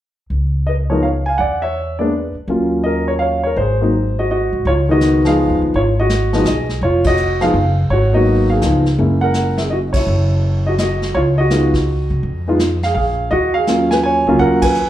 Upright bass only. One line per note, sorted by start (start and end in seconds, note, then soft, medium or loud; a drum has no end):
0.30 1.35 C#2 medium
1.39 2.31 E2 medium
2.35 muted upright bass stroke soft
2.48 3.52 D#2 medium
3.56 4.48 G#1 medium
4.53 4.64 G#2 medium
4.65 5.46 C#2 medium
5.50 5.61 D#2 medium
5.62 5.73 D2 medium
5.74 6.42 G#1 medium
6.46 6.79 B1 medium
6.81 7.50 F1 medium
7.54 7.88 F#1 medium
7.90 8.58 G#1 medium
8.62 8.96 C#2 medium
8.98 10.03 F#1 medium
10.07 11.11 F#1 medium
11.15 12.06 C#2 medium
12.10 12.22 C3 medium
12.23 12.91 F2 medium
12.95 13.29 A#1 medium
13.31 14.23 D#2 medium
14.27 14.38 C#2 medium
14.39 14.89 D#2 medium